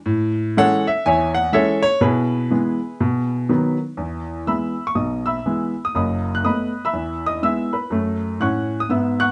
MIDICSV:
0, 0, Header, 1, 2, 480
1, 0, Start_track
1, 0, Key_signature, 4, "major"
1, 0, Tempo, 490597
1, 65, Time_signature, 4, 2, 24, 8
1, 9116, End_track
2, 0, Start_track
2, 0, Title_t, "Grand piano"
2, 0, Program_c, 0, 0
2, 55, Note_on_c, 0, 45, 83
2, 265, Control_c, 0, 64, 127
2, 467, Note_off_c, 0, 45, 0
2, 556, Control_c, 0, 64, 0
2, 559, Note_on_c, 0, 56, 58
2, 561, Note_on_c, 0, 52, 54
2, 563, Note_on_c, 0, 61, 68
2, 568, Note_on_c, 0, 78, 108
2, 572, Note_on_c, 0, 69, 76
2, 574, Note_on_c, 0, 73, 66
2, 818, Note_off_c, 0, 56, 0
2, 820, Note_off_c, 0, 52, 0
2, 821, Note_off_c, 0, 61, 0
2, 831, Note_off_c, 0, 69, 0
2, 832, Note_off_c, 0, 73, 0
2, 849, Note_off_c, 0, 78, 0
2, 856, Note_on_c, 0, 76, 82
2, 1032, Note_off_c, 0, 76, 0
2, 1035, Note_on_c, 0, 80, 94
2, 1036, Note_on_c, 0, 40, 64
2, 1050, Note_on_c, 0, 76, 59
2, 1053, Note_on_c, 0, 73, 65
2, 1310, Note_off_c, 0, 76, 0
2, 1311, Note_off_c, 0, 73, 0
2, 1316, Note_on_c, 0, 78, 90
2, 1322, Note_off_c, 0, 80, 0
2, 1437, Note_off_c, 0, 40, 0
2, 1491, Note_on_c, 0, 52, 52
2, 1497, Note_on_c, 0, 56, 55
2, 1498, Note_on_c, 0, 76, 88
2, 1502, Note_off_c, 0, 78, 0
2, 1504, Note_on_c, 0, 61, 59
2, 1510, Note_on_c, 0, 73, 75
2, 1511, Note_on_c, 0, 69, 78
2, 1757, Note_off_c, 0, 52, 0
2, 1762, Note_off_c, 0, 56, 0
2, 1767, Note_off_c, 0, 61, 0
2, 1771, Note_off_c, 0, 73, 0
2, 1779, Note_off_c, 0, 69, 0
2, 1786, Note_on_c, 0, 73, 96
2, 1793, Note_off_c, 0, 76, 0
2, 1966, Note_on_c, 0, 47, 70
2, 1970, Note_on_c, 0, 71, 64
2, 1976, Note_off_c, 0, 73, 0
2, 1981, Note_on_c, 0, 64, 46
2, 1989, Note_on_c, 0, 68, 53
2, 2161, Control_c, 0, 64, 127
2, 2379, Note_off_c, 0, 47, 0
2, 2450, Note_on_c, 0, 52, 46
2, 2460, Note_on_c, 0, 56, 44
2, 2460, Note_on_c, 0, 59, 48
2, 2475, Control_c, 0, 64, 0
2, 2716, Note_off_c, 0, 52, 0
2, 2723, Note_off_c, 0, 56, 0
2, 2723, Note_off_c, 0, 59, 0
2, 2940, Note_on_c, 0, 47, 63
2, 3114, Control_c, 0, 64, 127
2, 3347, Note_off_c, 0, 47, 0
2, 3417, Note_on_c, 0, 51, 52
2, 3419, Note_on_c, 0, 59, 53
2, 3423, Note_on_c, 0, 54, 44
2, 3432, Control_c, 0, 64, 0
2, 3673, Note_off_c, 0, 64, 0
2, 3677, Note_off_c, 0, 68, 0
2, 3681, Note_off_c, 0, 51, 0
2, 3683, Note_off_c, 0, 59, 0
2, 3685, Note_off_c, 0, 54, 0
2, 3707, Note_off_c, 0, 71, 0
2, 3887, Note_on_c, 0, 40, 52
2, 3889, Note_on_c, 0, 52, 40
2, 4083, Control_c, 0, 64, 127
2, 4300, Note_off_c, 0, 40, 0
2, 4301, Note_off_c, 0, 52, 0
2, 4371, Note_on_c, 0, 52, 34
2, 4377, Note_on_c, 0, 88, 63
2, 4378, Note_on_c, 0, 59, 31
2, 4379, Note_on_c, 0, 56, 32
2, 4384, Note_on_c, 0, 76, 40
2, 4386, Note_on_c, 0, 83, 49
2, 4389, Control_c, 0, 64, 0
2, 4637, Note_off_c, 0, 52, 0
2, 4642, Note_off_c, 0, 59, 0
2, 4643, Note_off_c, 0, 56, 0
2, 4741, Note_off_c, 0, 76, 0
2, 4742, Note_off_c, 0, 83, 0
2, 4764, Note_off_c, 0, 88, 0
2, 4764, Note_on_c, 0, 85, 60
2, 4844, Note_on_c, 0, 35, 50
2, 4844, Note_on_c, 0, 47, 44
2, 4846, Note_on_c, 0, 87, 45
2, 4858, Note_off_c, 0, 85, 0
2, 4860, Note_on_c, 0, 75, 33
2, 5133, Note_off_c, 0, 75, 0
2, 5143, Note_on_c, 0, 88, 64
2, 5146, Note_off_c, 0, 87, 0
2, 5155, Note_on_c, 0, 83, 43
2, 5156, Note_on_c, 0, 76, 47
2, 5258, Note_off_c, 0, 35, 0
2, 5259, Note_off_c, 0, 47, 0
2, 5340, Note_on_c, 0, 56, 41
2, 5340, Note_on_c, 0, 59, 36
2, 5341, Note_on_c, 0, 52, 36
2, 5604, Note_off_c, 0, 56, 0
2, 5604, Note_off_c, 0, 59, 0
2, 5605, Note_off_c, 0, 52, 0
2, 5688, Note_off_c, 0, 83, 0
2, 5689, Note_off_c, 0, 76, 0
2, 5721, Note_off_c, 0, 88, 0
2, 5722, Note_on_c, 0, 87, 67
2, 5817, Note_off_c, 0, 87, 0
2, 5818, Note_on_c, 0, 42, 51
2, 5820, Note_on_c, 0, 30, 50
2, 5831, Note_on_c, 0, 87, 51
2, 5838, Note_on_c, 0, 83, 36
2, 5844, Note_on_c, 0, 75, 39
2, 6026, Control_c, 0, 64, 127
2, 6190, Note_off_c, 0, 83, 0
2, 6192, Note_off_c, 0, 75, 0
2, 6210, Note_on_c, 0, 90, 68
2, 6213, Note_off_c, 0, 87, 0
2, 6227, Note_off_c, 0, 42, 0
2, 6228, Note_off_c, 0, 30, 0
2, 6301, Note_off_c, 0, 90, 0
2, 6301, Note_on_c, 0, 57, 32
2, 6307, Note_on_c, 0, 87, 60
2, 6308, Note_on_c, 0, 59, 31
2, 6312, Control_c, 0, 64, 0
2, 6319, Note_on_c, 0, 83, 50
2, 6320, Note_on_c, 0, 75, 39
2, 6565, Note_off_c, 0, 57, 0
2, 6570, Note_off_c, 0, 59, 0
2, 6670, Note_off_c, 0, 83, 0
2, 6671, Note_off_c, 0, 75, 0
2, 6691, Note_off_c, 0, 87, 0
2, 6700, Note_on_c, 0, 88, 65
2, 6706, Note_on_c, 0, 83, 57
2, 6710, Note_on_c, 0, 76, 52
2, 6783, Note_on_c, 0, 40, 45
2, 6784, Note_on_c, 0, 52, 45
2, 6953, Control_c, 0, 64, 127
2, 7082, Note_off_c, 0, 83, 0
2, 7084, Note_off_c, 0, 76, 0
2, 7107, Note_off_c, 0, 88, 0
2, 7108, Note_on_c, 0, 87, 66
2, 7114, Note_on_c, 0, 75, 50
2, 7191, Note_off_c, 0, 40, 0
2, 7191, Note_off_c, 0, 52, 0
2, 7257, Note_off_c, 0, 75, 0
2, 7264, Note_off_c, 0, 87, 0
2, 7265, Note_on_c, 0, 56, 39
2, 7268, Note_on_c, 0, 59, 36
2, 7271, Note_on_c, 0, 88, 72
2, 7273, Note_on_c, 0, 64, 38
2, 7275, Control_c, 0, 64, 0
2, 7287, Note_on_c, 0, 76, 58
2, 7528, Note_off_c, 0, 56, 0
2, 7531, Note_off_c, 0, 59, 0
2, 7534, Note_off_c, 0, 64, 0
2, 7548, Note_off_c, 0, 76, 0
2, 7560, Note_off_c, 0, 88, 0
2, 7561, Note_on_c, 0, 83, 53
2, 7566, Note_on_c, 0, 71, 45
2, 7733, Note_on_c, 0, 42, 45
2, 7735, Note_off_c, 0, 71, 0
2, 7745, Note_off_c, 0, 83, 0
2, 7752, Note_on_c, 0, 57, 51
2, 7959, Control_c, 0, 64, 127
2, 8121, Note_off_c, 0, 42, 0
2, 8132, Note_off_c, 0, 57, 0
2, 8218, Note_on_c, 0, 45, 57
2, 8225, Note_on_c, 0, 90, 57
2, 8230, Note_on_c, 0, 78, 45
2, 8236, Note_on_c, 0, 61, 58
2, 8237, Control_c, 0, 64, 0
2, 8237, Note_on_c, 0, 85, 51
2, 8587, Note_off_c, 0, 78, 0
2, 8591, Note_off_c, 0, 85, 0
2, 8604, Note_off_c, 0, 45, 0
2, 8611, Note_off_c, 0, 90, 0
2, 8613, Note_on_c, 0, 87, 64
2, 8615, Note_off_c, 0, 61, 0
2, 8699, Note_on_c, 0, 44, 43
2, 8705, Note_off_c, 0, 87, 0
2, 8708, Note_on_c, 0, 88, 47
2, 8715, Note_on_c, 0, 59, 59
2, 8718, Note_on_c, 0, 76, 39
2, 8985, Note_off_c, 0, 76, 0
2, 9000, Note_off_c, 0, 88, 0
2, 9000, Note_on_c, 0, 90, 83
2, 9008, Note_on_c, 0, 85, 55
2, 9014, Note_on_c, 0, 78, 51
2, 9085, Note_off_c, 0, 44, 0
2, 9095, Note_off_c, 0, 59, 0
2, 9116, Note_off_c, 0, 78, 0
2, 9116, Note_off_c, 0, 85, 0
2, 9116, Note_off_c, 0, 90, 0
2, 9116, End_track
0, 0, End_of_file